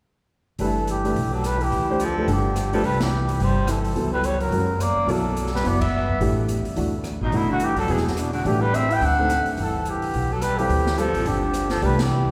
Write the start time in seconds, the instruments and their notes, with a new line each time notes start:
0.59 upright bass G1, baritone saxophone E3, grand piano A3 D4 G4 B4, trumpet A4, open hi-hat
0.87 baritone saxophone E3, trumpet G4, closed hi-hat
1.04 grand piano A3 D4 G4 B4, open hi-hat
1.16 upright bass B1, open hi-hat
1.32 baritone saxophone F#3, trumpet A4
1.44 baritone saxophone G3, trumpet B4, cross-stick, closed hi-hat
1.59 baritone saxophone E3, open hi-hat
1.63 trumpet G4
1.72 upright bass D2, open hi-hat
1.89 grand piano A3 D4 G4 C5
2.00 baritone saxophone F3, closed hi-hat
2.05 trumpet A4
2.18 grand piano A3 D4 G4 B4
2.28 upright bass G1, baritone saxophone D3, open hi-hat
2.33 trumpet G4
2.56 cross-stick, closed hi-hat
2.73 baritone saxophone F3, grand piano A3 D4 G4 B4, trumpet A4, open hi-hat
2.84 upright bass C2, baritone saxophone G3, trumpet B4, open hi-hat
3.00 baritone saxophone E3, trumpet G4, snare, ride
3.29 open hi-hat
3.40 upright bass G1, baritone saxophone G3, trumpet C5, open hi-hat
3.67 baritone saxophone E3, trumpet A4, cross-stick, closed hi-hat
3.84 open hi-hat
3.95 upright bass C#2, grand piano F#3 B3 E4 A4, open hi-hat
4.13 baritone saxophone G3, trumpet B4
4.24 baritone saxophone G3, trumpet C#5, closed hi-hat
4.40 baritone saxophone F#3, trumpet A#4, open hi-hat
4.51 upright bass F#2, grand piano G#3 C#4 F#4 A#4, open hi-hat
4.80 baritone saxophone A#3, trumpet D5, cross-stick, closed hi-hat
4.97 muted upright bass stroke
5.06 upright bass B1, grand piano F#3 B3 E4 A4, baritone saxophone F#3, open hi-hat
5.11 trumpet A4
5.37 closed hi-hat
5.46 snare
5.53 baritone saxophone G3, trumpet B4, snare
5.64 upright bass F#1, grand piano F#3 B3 E4 F#4, baritone saxophone B3, trumpet D5, open hi-hat
5.81 baritone saxophone B3, trumpet E5, kick, ride
6.09 upright bass G1
6.20 upright bass A1, grand piano E3 A3 D4 G4, open hi-hat
6.49 closed hi-hat
6.65 muted upright bass stroke, open hi-hat
6.76 upright bass D2, grand piano E3 A3 D4 F#4, open hi-hat
7.04 cross-stick, closed hi-hat
7.21 upright bass A1, baritone saxophone B2, trumpet D#4
7.31 upright bass G1, baritone saxophone B2, grand piano E3 A3 D4 F#4, open hi-hat
7.36 trumpet E4
7.49 baritone saxophone D3, trumpet F#4
7.60 baritone saxophone E3, closed hi-hat
7.64 trumpet G4
7.76 baritone saxophone F#3, trumpet A4, kick, open hi-hat
7.87 upright bass E1, baritone saxophone E3, grand piano F#3 B3 E4 G#4, open hi-hat
7.91 trumpet G#4
7.97 snare
8.03 baritone saxophone G#2
8.07 trumpet B3, snare
8.17 baritone saxophone B2, trumpet D4, cross-stick, closed hi-hat
8.33 baritone saxophone D3, trumpet F#4, open hi-hat
8.44 upright bass A1, baritone saxophone E3, grand piano E3 A3 D4 G4, trumpet G4, open hi-hat
8.61 baritone saxophone G3, trumpet B4
8.74 baritone saxophone C4, trumpet E5, closed hi-hat
8.90 baritone saxophone E4, trumpet G5, open hi-hat
9.01 upright bass D2, baritone saxophone D4, trumpet F#5, open hi-hat
9.18 grand piano A3 C4 D#4 A4
9.29 cross-stick, closed hi-hat
9.46 muted upright bass stroke, open hi-hat
9.57 upright bass G1, baritone saxophone E3, open hi-hat
9.62 trumpet A4
9.85 baritone saxophone E3, closed hi-hat
9.90 trumpet G4
10.02 muted upright bass stroke, open hi-hat
10.14 upright bass B1, open hi-hat
10.31 baritone saxophone F#3, trumpet A4
10.41 baritone saxophone G3, trumpet B4, cross-stick, closed hi-hat
10.58 baritone saxophone E3, grand piano G3 C4 A4 F5, trumpet G4, open hi-hat
10.69 upright bass D2, open hi-hat
10.86 snare
10.98 baritone saxophone F3, grand piano G3 C4 F4 A4, trumpet A4, closed hi-hat
11.13 upright bass A1, open hi-hat
11.26 upright bass G1, baritone saxophone D3, trumpet G4, open hi-hat
11.54 cross-stick, closed hi-hat
11.70 baritone saxophone F3, trumpet A4, snare, open hi-hat
11.82 upright bass C2, baritone saxophone G3, grand piano A3 D4 G4 B4, trumpet B4, open hi-hat
11.98 baritone saxophone E3, trumpet G4, snare, ride
12.28 muted upright bass stroke